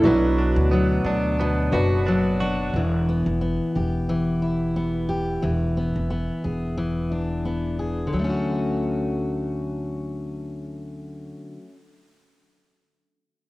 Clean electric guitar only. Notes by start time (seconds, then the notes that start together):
Already playing: A3 C#4 A4
0.05 F#3
0.38 D4
0.71 B3
1.06 D4
1.40 B3
1.73 F#4
2.06 D4
2.40 F#4